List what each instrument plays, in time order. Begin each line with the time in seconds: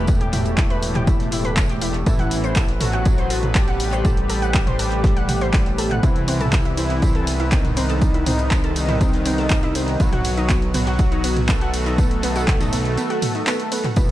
Already playing: analog synth bass E1, supersaw synth A2, analog synth pad E3 G3 G4, analog synth lead A3
0.07 analog synth pad A3, kick, closed hi-hat, tambourine
0.21 synth arpeggio sound G4 G5, closed hi-hat
0.33 synth arpeggio sound E4 E5, mid tom, open hi-hat, tambourine
0.46 closed hi-hat
0.58 synth arpeggio sound E4 E5, kick, snare, clap, closed hi-hat, tambourine
0.70 synth arpeggio sound B4 B5, closed hi-hat
0.82 open hi-hat, tambourine
0.95 synth arpeggio sound G4 G5, closed hi-hat, mid tom
1.07 synth arpeggio sound E4 E5, kick, closed hi-hat, tambourine
1.20 snare, closed hi-hat
1.32 synth arpeggio sound E4 E5, open hi-hat, tambourine
1.44 synth arpeggio sound B4 B5, snare, closed hi-hat
1.57 kick, snare, clap, closed hi-hat, mid tom, tambourine
1.69 synth arpeggio sound G4 G5, snare, closed hi-hat
1.81 synth arpeggio sound E4 E5, open hi-hat, tambourine
1.94 closed hi-hat
2.06 analog synth bass A1, analog synth pad C3 B3 B4, supersaw synth E3, analog synth lead E4, synth arpeggio sound A4 A5, kick, closed hi-hat, tambourine
2.19 synth arpeggio sound F#5 F#6, snare, closed hi-hat, mid tom
2.31 open hi-hat, tambourine
2.44 synth arpeggio sound C5 C6, closed hi-hat
2.56 synth arpeggio sound A4 A5, kick, snare, clap, closed hi-hat, tambourine
2.69 closed hi-hat
2.81 supersaw synth F#3, analog synth lead F#4, synth arpeggio sound A4 A5, mid tom, open hi-hat, tambourine
2.93 synth arpeggio sound F#5 F#6, closed hi-hat
3.05 kick, closed hi-hat, tambourine
3.18 synth arpeggio sound C5 C6, closed hi-hat
3.30 synth arpeggio sound A4 A5, open hi-hat, tambourine
3.43 closed hi-hat, mid tom
3.55 supersaw synth G3, analog synth lead G4, synth arpeggio sound A4 A5, kick, snare, clap, closed hi-hat, tambourine
3.68 synth arpeggio sound F#5 F#6, closed hi-hat
3.80 open hi-hat
3.93 synth arpeggio sound C5 C6, closed hi-hat
4.05 synth arpeggio sound A4 A5, kick, closed hi-hat, mid tom, tambourine
4.17 closed hi-hat
4.29 synth arpeggio sound A4 A5, open hi-hat, tambourine
4.42 synth arpeggio sound F#5 F#6, closed hi-hat
4.54 kick, snare, clap, closed hi-hat, tambourine
4.67 synth arpeggio sound C5 C6, closed hi-hat, mid tom
4.79 synth arpeggio sound A4 A5, open hi-hat, tambourine
4.92 closed hi-hat
5.04 synth arpeggio sound A4 A5, kick, snare, closed hi-hat, tambourine
5.17 synth arpeggio sound F#5 F#6, closed hi-hat
5.29 mid tom, open hi-hat, tambourine
5.41 synth arpeggio sound C5 C6, snare, closed hi-hat
5.54 synth arpeggio sound A4 A5, kick, snare, clap, open hi-hat, tambourine
5.66 closed hi-hat
5.78 synth arpeggio sound A4 A5, open hi-hat, tambourine
5.91 synth arpeggio sound F#5 F#6, closed hi-hat, mid tom
6.03 analog synth bass C2, supersaw synth E3, analog synth pad G3, synth arpeggio sound C4 C5, analog synth lead E4, kick, closed hi-hat, tambourine
6.15 snare, closed hi-hat
6.28 synth arpeggio sound C4 C5, open hi-hat, ride, tambourine
6.41 synth arpeggio sound A4 A5, closed hi-hat, mid tom
6.53 kick, snare, clap, closed hi-hat, tambourine
6.65 synth arpeggio sound E4 E5, closed hi-hat
6.77 supersaw synth E3, synth arpeggio sound C4 C5, analog synth lead E4, open hi-hat, ride, tambourine
6.90 closed hi-hat
7.02 synth arpeggio sound C4 C5, kick, closed hi-hat, mid tom, tambourine
7.15 synth arpeggio sound A4 A5, closed hi-hat
7.27 open hi-hat, ride, tambourine
7.40 synth arpeggio sound E4 E5, closed hi-hat
7.52 supersaw synth D#3, synth arpeggio sound C4 C5, analog synth lead D#4, kick, snare, clap, closed hi-hat, tambourine
7.65 closed hi-hat, mid tom
7.76 synth arpeggio sound C4 C5, open hi-hat, ride
7.89 synth arpeggio sound A4 A5, closed hi-hat
8.01 kick, closed hi-hat, tambourine
8.14 synth arpeggio sound E4 E5, closed hi-hat
8.26 synth arpeggio sound C4 C5, mid tom, open hi-hat, ride, tambourine
8.39 closed hi-hat
8.51 synth arpeggio sound C4 C5, kick, snare, clap, closed hi-hat, tambourine
8.64 synth arpeggio sound A4 A5, closed hi-hat
8.76 open hi-hat, ride, tambourine
8.89 synth arpeggio sound E4 E5, closed hi-hat, mid tom
9.01 synth arpeggio sound C4 C5, kick, closed hi-hat, tambourine
9.13 snare, closed hi-hat
9.26 synth arpeggio sound C4 C5, open hi-hat, ride, tambourine
9.38 synth arpeggio sound A4 A5, snare, closed hi-hat
9.50 kick, snare, clap, closed hi-hat, mid tom, tambourine
9.63 synth arpeggio sound E4 E5, snare, closed hi-hat
9.75 synth arpeggio sound C4 C5, open hi-hat, ride, tambourine
9.88 closed hi-hat
10.00 analog synth bass B1, analog synth pad D#3 F#3 F#4, supersaw synth F#3, synth arpeggio sound B3 B4, analog synth lead F#4, kick, closed hi-hat, tambourine
10.13 synth arpeggio sound F#4 F#5, snare, closed hi-hat, mid tom
10.24 open hi-hat, ride, tambourine
10.37 synth arpeggio sound D#4 D#5, closed hi-hat
10.49 synth arpeggio sound B3 B4, kick, snare, clap, closed hi-hat, tambourine
10.62 closed hi-hat
10.74 supersaw synth F#3, synth arpeggio sound B3 B4, analog synth lead F#4, mid tom, open hi-hat, ride, tambourine
10.87 synth arpeggio sound F#4 F#5, closed hi-hat
10.99 kick, closed hi-hat, tambourine
11.12 synth arpeggio sound D#4 D#5, closed hi-hat
11.24 synth arpeggio sound B3 B4, open hi-hat, ride, tambourine
11.37 closed hi-hat, mid tom
11.49 supersaw synth A3, synth arpeggio sound B3 B4, analog synth lead A4, kick, snare, clap, closed hi-hat, tambourine
11.61 synth arpeggio sound F#4 F#5, closed hi-hat
11.73 open hi-hat, ride
11.86 synth arpeggio sound D#4 D#5, closed hi-hat
11.98 synth arpeggio sound B3 B4, kick, closed hi-hat, mid tom, tambourine
12.11 closed hi-hat
12.23 synth arpeggio sound B3 B4, snare, open hi-hat, ride, tambourine
12.35 synth arpeggio sound F#4 F#5, snare, closed hi-hat, tambourine
12.48 kick, snare, clap, closed hi-hat, tambourine
12.60 synth arpeggio sound D#4 D#5, snare, closed hi-hat, mid tom, tambourine
12.73 synth arpeggio sound B3 B4, open hi-hat, ride, tambourine
12.85 closed hi-hat
12.97 synth arpeggio sound B3 B4, closed hi-hat, tambourine
13.10 synth arpeggio sound F#4 F#5, snare, closed hi-hat
13.22 mid tom, open hi-hat, ride, tambourine
13.35 synth arpeggio sound D#4 D#5, snare, closed hi-hat
13.46 synth arpeggio sound B3 B4, snare, clap, open hi-hat, tambourine
13.60 snare, closed hi-hat
13.72 synth arpeggio sound B3 B4, open hi-hat, ride, tambourine
13.84 synth arpeggio sound F#4 F#5, closed hi-hat, mid tom
13.96 analog synth bass E1, supersaw synth B2, analog synth pad E3 G3 B3 G4, analog synth lead B3, synth arpeggio sound E4 E5, kick, closed hi-hat, tambourine